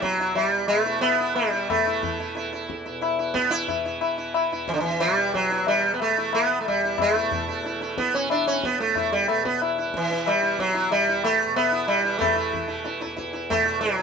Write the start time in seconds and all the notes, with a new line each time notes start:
Already playing: E2 B2 E3 E4
0.02 F#3, tabla ke
0.17 E2 E4, tabla te
0.35 G3, tabla tin
0.68 B2 A3, tabla na
0.86 E4
1.01 B3, tabla na
1.20 E4
1.26 E3
1.36 G3, tabla na
1.53 E4
1.70 A3, tabla na, tabla ge
1.81 E3
1.87 E4
2.03 E4, tabla ge
2.20 E4
2.34 E2 E4, tabla te
2.53 E4, tabla te
2.70 tabla ke
2.86 B2 E4, tabla te
3.01 E4, tabla na
3.19 E4
3.34 B3, tabla ke
3.44 E3
3.51 E4, tabla te
3.68 E4, tabla tin, tabla ge
3.85 E4
3.97 E3 E4, tabla na
4.18 E4
4.34 E4, tabla na
4.52 E2 E4
4.68 E3, tabla ke
4.74 D3
4.80 E3, tabla te
5.00 G3, tabla na
5.06 B2
5.17 E4
5.34 F#3, tabla ke
5.50 E4, tabla te
5.60 E3
5.67 G3, tabla tin
5.94 B3
6.00 A3, tabla na
6.13 E3
6.17 E4
6.33 B3, tabla na
6.61 A3
6.65 E2 G3, tabla na
6.84 E4
6.98 A3, tabla na, tabla ge
7.15 E4
7.21 B2
7.31 E4, tabla ge
7.48 E4
7.64 E4, tabla te
7.73 E3
7.81 E4, tabla te
7.98 B3, tabla ke
8.14 C#4, tabla te
8.27 E3, tabla na
8.31 D4
8.47 C#4
8.64 B3, tabla ke
8.79 E2 A3, tabla te
8.95 E4, tabla tin, tabla ge
9.13 G3
9.28 A3, tabla na
9.33 B2
9.45 B3, tabla ke
9.62 E4, tabla na
9.78 E4
9.87 E3
9.94 E3, tabla ke
10.11 E4, tabla te
10.26 G3, tabla na
10.40 E3 E4
10.59 F#3, tabla ke
10.74 E4, tabla te
10.91 E2 G3, tabla tin
11.09 E4
11.24 A3, tabla na
11.46 B2
11.56 B3, tabla na
11.72 E4
11.88 G3, tabla na
12.00 E3 E4
12.19 A3, tabla na, tabla ge
12.35 E4
12.53 E3, tabla ge
12.68 E4
12.84 E4, tabla te
13.01 E4, tabla te
13.05 E2
13.16 E4, tabla ke
13.33 E4, tabla te
13.50 A3, tabla tin, tabla ge
13.58 B2
13.65 E4
13.81 F#3, tabla te
13.98 E4